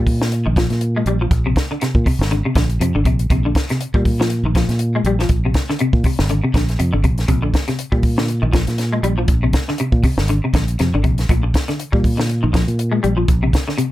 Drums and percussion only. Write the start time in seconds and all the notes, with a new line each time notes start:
0.07 kick, open hi-hat
0.22 snare
0.32 closed hi-hat
0.56 kick, snare, closed hi-hat
0.70 snare, closed hi-hat
0.81 closed hi-hat
1.06 closed hi-hat
1.31 kick, closed hi-hat
1.56 kick, snare, closed hi-hat
1.81 snare, closed hi-hat
1.95 kick
2.06 kick, open hi-hat
2.21 snare
2.31 closed hi-hat
2.55 kick, snare, closed hi-hat
2.70 closed hi-hat
2.81 closed hi-hat
3.05 kick, closed hi-hat
3.19 closed hi-hat
3.30 kick, closed hi-hat
3.55 kick, snare, closed hi-hat
3.69 snare, closed hi-hat
3.81 closed hi-hat
3.94 kick
4.05 kick, open hi-hat
4.21 snare
4.30 closed hi-hat
4.55 kick, snare, closed hi-hat
4.69 snare, closed hi-hat
4.79 closed hi-hat
5.05 closed hi-hat
5.19 snare
5.29 kick, closed hi-hat
5.54 kick, snare, closed hi-hat
5.69 snare
5.79 closed hi-hat
5.93 kick
6.04 kick, open hi-hat
6.19 snare
6.29 closed hi-hat
6.54 kick, snare, closed hi-hat
6.69 snare, closed hi-hat
6.79 closed hi-hat
7.04 kick, closed hi-hat
7.18 snare, closed hi-hat
7.28 kick, closed hi-hat
7.54 kick, snare, closed hi-hat
7.68 snare, closed hi-hat
7.79 closed hi-hat
7.92 kick
8.03 kick, open hi-hat
8.18 snare
8.28 closed hi-hat
8.53 kick, snare, closed hi-hat
8.67 snare, closed hi-hat
8.78 snare, closed hi-hat
9.04 closed hi-hat
9.28 kick, closed hi-hat
9.53 kick, snare, closed hi-hat
9.68 snare
9.78 closed hi-hat
9.92 kick
10.03 kick, open hi-hat
10.18 snare
10.28 closed hi-hat
10.54 kick, snare, closed hi-hat
10.68 closed hi-hat
10.79 snare, closed hi-hat
11.04 kick, closed hi-hat
11.18 snare, closed hi-hat
11.29 kick, closed hi-hat
11.54 kick, snare, closed hi-hat
11.68 snare, closed hi-hat
11.80 closed hi-hat
11.93 kick
12.04 kick, open hi-hat
12.19 snare
12.29 closed hi-hat
12.54 kick, snare, closed hi-hat
12.68 closed hi-hat
12.79 closed hi-hat
13.04 closed hi-hat
13.28 kick, closed hi-hat
13.53 kick, snare, closed hi-hat
13.69 snare
13.78 closed hi-hat